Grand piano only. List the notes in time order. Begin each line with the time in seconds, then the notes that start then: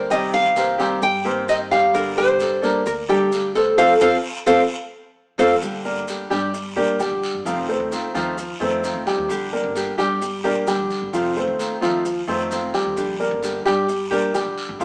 0.10 G3 G4 G5
0.56 A#3 A#4 C5
0.79 G3 G4 G5
1.25 A#3 A#4 C5
1.71 G3 G4 G5
2.17 G3 G4 G5
2.63 A#3 A#4 D5
3.09 G3 G4 G5
3.55 A3 A4 C5
3.78 C4 F4 A4
4.01 C4 F4 A4
4.47 C4 F4 A4
5.39 C4 F4 A4
5.85 A#3 A#4 D5
6.31 G3 G4 G5
6.76 A#3 A#4 D5
6.99 G3 G4 G5
7.46 F3 F4 F5
7.69 A3 A4 C5
8.15 F3 F4 F5
8.61 A3 A4 C5
9.07 G3 G4 G5
9.53 A#3 A#4 D5
9.98 G3 G4 G5
10.44 A#3 A#4 D5
10.67 G3 G4 G5
11.13 F3 F4 F5
11.36 A3 A4 C5
11.82 F3 F4 F5
12.28 A3 A4 C5
12.74 G3 G4 G5
13.20 A#3 A#4 D5
13.65 G3 G4 G5
14.11 A#3 A#4 D5
14.34 G3 G4 G5
14.80 F3 F4 F5